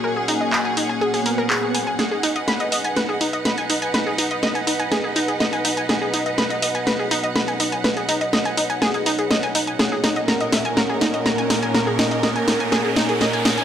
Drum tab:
HH |--o---o--oo---o-|x-oxxxoxx-oxxxox|x-oxxxoxx-oxxxox|x-oxxxoxx-oxxxox|
CP |----x-------x---|----------------|----------------|----------------|
SD |----------------|o---o---o---o---|o---o---o---o---|o---o---o---o---|

HH |xxoxxxoxxxoxxxox|x-oxxxoxx-oxxxox|x-oxxxoxx-oxxxox|
CP |----------------|----------------|----------------|
SD |o---o---o---o---|o-o-o-o-o-o-o-o-|o-o-o-o-o-o-o-o-|